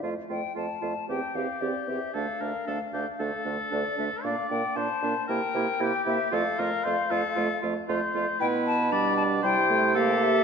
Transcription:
X:1
M:4/4
L:1/8
Q:1/4=115
K:F
V:1 name="Flute"
f g a2 g f d e | f4- f z d e | f g a2 g3 e | f4- f z3 |
g a =b a g2 f e |]
V:2 name="Oboe"
z4 G4 | A B A G A4 | d2 c2 B2 G2 | A B c A2 z c2 |
=B2 d2 c2 A2 |]
V:3 name="Clarinet"
F F F F G G G G | D D D D D D D D | D D D D E E E E | F F F F F F F F |
E2 D2 E2 G2 |]
V:4 name="French horn"
A, A, A, A, C C C C | A, A, A, A, A, A, A, A, | B, B, B, B, B, B, B, B, | A, A, A, A, A, A, A, A, |
=B,2 G,2 G, A, _B,2 |]
V:5 name="Bassoon" clef=bass
F,, F,, F,, F,, E,, E,, E,, E,, | D,, D,, D,, D,, D,, D,, D,, D,, | B,, B,, B,, B,, C, C, C, C, | F,, F,, F,, F,, F,, F,, F,, F,, |
=B,,4 C,4 |]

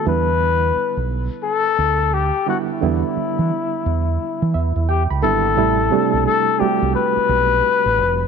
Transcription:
X:1
M:4/4
L:1/16
Q:"Swing 16ths" 1/4=87
K:Em
V:1 name="Flugelhorn"
B6 z2 A4 G2 F E- | E12 G2 A2- | A4 A2 G2 B8 |]
V:2 name="Reed electric piano"
z16 | z8 z2 e2 g b3 | z16 |]
V:3 name="Reed electric piano"
[D,G,B,E]8 z6 [D,G,B,E]2 | [D,G,B,E]8 z6 [D,G,B,E]2 | [C,G,A,E]2 [C,G,A,D]4 [G,A,CFG]8 z2 |]
V:4 name="Fingered electric bass" clef=bass
E,,4 z B,,,2 z3 D,,3 z3 | E,, z2 E, z2 E,,2 z E, E,, E,,2 ^C,, ^G,,,2 | A,,,2 z B,,, z3 C,, z2 B,,,2 z A,,, =F,,,2 |]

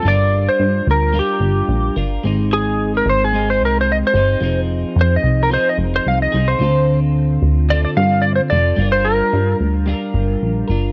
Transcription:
X:1
M:4/4
L:1/16
Q:"Swing 16ths" 1/4=110
K:Gphr
V:1 name="Electric slide guitar"
d3 c3 B2 G6 z2 | z2 A3 B c A2 c B c e c3- | c z3 c e2 B c e2 c f e2 c- | c3 z4 z d d f2 d c d2- |
d c B4 z8 z2 |]
V:2 name="Clean electric guitar"
[G,DFB]8 [G,DFB]6 [DFB]2 | [A,CE]8 [A,CEG]6 [CEG]2 | [F,CEA]8 [F,CEA]6 [CEA]2 | [D,CF=A]8 [D,CFA]6 [CFA]2 |
[G,DFB]8 [G,DFB]6 [DFB]2 |]
V:3 name="Analog synth bass" clef=bass
G,,,4 G,,2 D,,3 z G,,,2 B,,,2 G,,,2 | A,,,6 A,,,4 C,,4 G,,,2 | F,,,4 F,,2 C,,3 z F,,,2 C,,2 C,,2 | D,,6 D,,4 G,,4 F,,,2 |
G,,,4 G,,2 D,,3 z G,,,2 B,,,2 G,,,2 |]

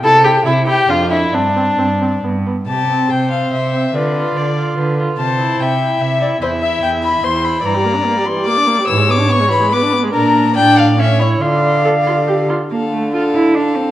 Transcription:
X:1
M:3/4
L:1/16
Q:1/4=144
K:C
V:1 name="Violin"
a2 g2 e2 g2 f2 e2 | d8 z4 | a4 g2 f2 e4 | d8- d2 z2 |
a4 g4 e2 d2 | c2 e2 g2 b2 c'2 b2 | [K:Dm] b6 c'2 d'4 | e'2 d'2 ^c'2 =b2 d'2 z2 |
b4 g2 f2 e2 ^c2 | d8- d2 z2 | f4 f4 f4 |]
V:2 name="Violin"
A2 G2 E2 G2 F2 E2 | D8 z4 | G4 c8 | B4 d4 B4 |
c4 e8 | e8 c4 | [K:Dm] d12 | ^c8 =B4 |
B4 d4 ^c4 | f8- f2 z2 | A4 A4 A4 |]
V:3 name="Viola"
E2 E2 E2 E2 D2 D2 | C2 C2 C2 C2 B,2 B,2 | z2 C4 C4 C2 | F2 F4 F4 F2 |
z2 E4 E4 E2 | E2 E4 E4 E2 | [K:Dm] E, G, B, D B, G, E, G, B, D B, G, | E, ^G, =B, D B, G, E, G, B, D B, G, |
D4 D4 ^C2 E2 | F4 A2 F2 G2 F2 | D,12 |]
V:4 name="Cello" clef=bass
C,4 C,4 F,,4 | G,,4 G,,4 G,,4 | C,4 C,4 C,4 | D,4 D,4 D,4 |
C,4 C,4 C,4 | E,,4 E,,4 E,,4 | [K:Dm] G,,4 z8 | ^G,,4 z8 |
B,,4 A,,8 | D,8- D,2 z2 | B,2 A,2 F2 E2 D2 C2 |]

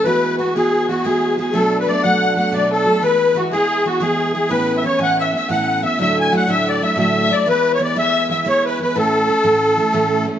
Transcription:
X:1
M:9/8
L:1/16
Q:3/8=121
K:A
V:1 name="Fiddle"
B4 F2 G4 F2 G4 G2 | A3 B d2 f4 f2 d2 A4 | B4 F2 G4 F2 G6 | B3 e c3/2 g/2 f2 e2 e2 f4 e2 |
e2 g2 f2 e2 d2 e2 e2 e2 d2 | B3 c d2 e4 e2 c2 B2 B2 | A16 z2 |]
V:2 name="Accordion"
B4 F2 G4 F2 G4 G2 | A3 B d2 f4 f2 d2 A4 | B4 F2 G4 F2 G4 G2 | B3 e c2 f2 e2 e2 f4 e2 |
e2 g2 f2 e2 d2 e2 e4 d2 | B3 c d2 e4 e2 c2 B2 B2 | A16 z2 |]
V:3 name="Steel-string acoustic guitar"
[E,G,B,F]4 [E,G,B,F]2 [E,G,B,F]4 [E,G,B,F]2 [E,G,B,F]4 [E,G,B,F]2 | [B,,F,A,B,D]4 [F,A,B,D]2 [B,,F,A,B,D]4 [F,A,B,D]2 [B,,F,A,B,D]4 [F,A,B,D]2 | [E,G,B,E]4 [E,G,B,E]2 [E,G,B,E]4 [E,G,B,E]2 [E,G,B,E]4 [E,G,B,E]2 | [A,,E,B,CE]4 [E,B,CE]2 [A,,E,B,CE]4 [E,B,CE]2 [A,,E,B,CE]4 [E,B,CE]2 |
[D,,A,,F,A,DE]4 [F,A,DE]2 [D,,A,,F,A,DE]4 [F,A,DE]2 [D,,A,,F,A,DE]4 [F,A,DE]2 | [E,G,B,E]4 [E,G,B,E]2 [E,G,B,E]4 [E,G,B,E]2 [E,G,B,E]4 [E,G,B,E]2 | [A,,E,A,CE]4 [E,A,CE]2 [A,,E,A,CE]4 [E,A,CE]2 [A,,E,A,CE]4 [E,A,CE]2 |]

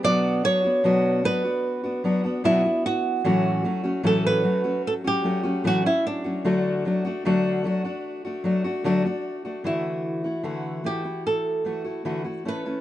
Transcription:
X:1
M:4/4
L:1/16
Q:1/4=75
K:D
V:1 name="Nylon-string guitar"
d2 c4 B6 E2 F2- | F4 A B3 A G3 F E D2- | D12 z4 | E6 G2 A6 B2 |]
V:2 name="Steel-string acoustic guitar"
[B,,F,B,DF]2 [F,B,DF] [B,DF] [B,,F,B,DF]2 [F,B,DF] [DF]2 [B,DF] [F,B,DF] [B,DF] [B,,F,B,DF] [DF]3 | [A,,E,F,A,CF]2 [F,A,CF] [F,A,CF] [A,,E,F,A,CF]2 [F,A,CF] [F,A,CF]2 [F,A,CF] [F,A,CF] [F,A,CF] [A,,E,F,A,CF] [F,A,CF]2 [F,A,CF] | [D,F,A,DF]2 [F,A,DF] [A,DF] [D,F,A,DF]2 [F,A,DF] [A,DF]2 [A,DF] [F,A,DF] [A,DF] [D,F,A,DF] [A,DF]2 [A,DF] | [D,E,A,EF]3 [A,EF] [D,E,A,EF]2 [E,A,EF] [A,EF]3 [E,A,EF] [A,EF] [D,E,A,EF] [A,EF] [A,CEA] [A,CEA] |]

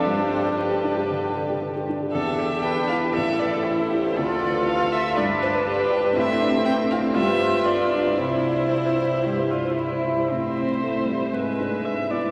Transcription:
X:1
M:4/4
L:1/16
Q:1/4=118
K:C
V:1 name="Violin"
c4 B8 z4 | e4 g2 f2 e2 d2 c4 | d4 f2 e2 d2 c2 B4 | e4 g2 f2 e4 d4 |
c12 z4 | [K:Am] e8 e8 |]
V:2 name="Grand piano"
G,, G A G A G D G D, G A G A G D G | E,, G A G A G E G A,,, A B A B A E A | D,, A B A B A F A G,, B c B c B G B | A,, A B A B A E A G,, B c B c B F B |
C,, c d c d c E c G,, c d c d c E c | [K:Am] A,,2 C2 A2 E2 ^G,,2 D2 B2 E2 |]
V:3 name="Cello"
G12- G2 z2 | A2 G2 B4 A4 E2 G2 | A8 B4 G4 | E2 D2 C4 G4 F2 D2 |
E4 E4 G2 F2 E4 | [K:Am] C4 A,2 G,2 ^G,6 B,2 |]
V:4 name="Viola"
D12- D2 z2 | D8 E8 | F8 D8 | C8 F8 |
E12- E2 z2 | [K:Am] c8 B4 e2 d2 |]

